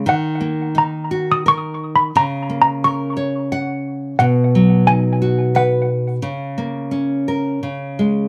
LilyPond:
<<
  \new Staff \with { instrumentName = "Handbells" } { \time 3/4 \key fis \major \tempo 4 = 87 fis''4 ais''8. dis'''16 \tuplet 3/2 { cis'''4 b''8 } | \tuplet 3/2 { ais''4 ais''8 } cis'''4. r8 | fis''4 gis''4 fis''4~ | fis''2 r4 | }
  \new Staff \with { instrumentName = "Nylon-string guitar" } { \time 3/4 \key fis \major dis8 ais8 dis'8 fis'8 ais'4 | cis8 ais8 ais'8 cis''8 fis''4 | b,8 fis8 dis'8 fis'8 b'4 | cis8 ais8 cis'8 ais'8 cis8 gis8 | }
>>